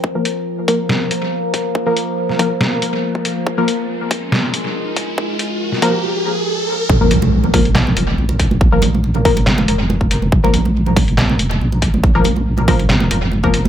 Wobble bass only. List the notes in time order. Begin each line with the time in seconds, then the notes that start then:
6.90 A#1
7.11 A#1
7.97 F1
8.18 A#1
8.61 A#1
8.82 A#1
9.47 G#1
9.58 F1
9.68 F1
10.32 A#1
10.54 A#1
11.40 F1
11.61 A#1
12.04 A#1
12.25 A#1
12.89 G#1
13.01 F1
13.11 F1